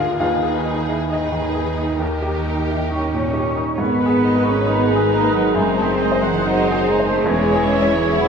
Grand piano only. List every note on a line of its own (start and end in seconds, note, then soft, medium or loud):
0.00 0.15 D2 medium
0.00 0.22 D3 soft
0.00 0.21 F4 soft
0.00 0.22 G4 medium
0.00 0.23 G#4 soft
0.00 0.17 F5 medium
0.00 0.22 G5 medium
0.20 1.98 D#2 soft
0.20 1.08 F4 soft
0.20 1.08 F5 medium
0.43 0.79 G#4 soft
0.65 1.02 D#4 soft
0.89 1.12 E4 soft
1.11 1.13 D#4 soft
1.11 1.76 D#4 soft
1.11 2.88 D#5 soft
1.32 1.69 D#3 soft
1.54 1.91 G#4 soft
1.78 2.01 D#4 soft
1.99 3.75 D#2 soft
2.22 2.59 G4 soft
2.45 2.82 D#4 soft
2.69 2.91 E4 soft
2.90 3.26 D#4 soft
3.13 3.49 A#2 soft
3.34 3.70 G4 soft
3.56 3.79 D#4 soft
3.78 5.51 G#2 soft
4.06 4.55 G#4 soft
4.35 4.84 B4 soft
4.66 5.14 D#4 soft
4.96 5.43 G#4 soft
5.24 5.55 B4 soft
5.54 7.24 F#2 medium
5.81 6.30 G#4 soft
6.12 6.59 C5 soft
6.42 6.88 D#4 soft
6.71 7.17 G#4 medium
7.00 7.28 C5 soft
7.26 8.28 E2 medium
7.55 8.02 G#4 medium
7.82 8.28 C#5 medium
8.12 8.28 E4 medium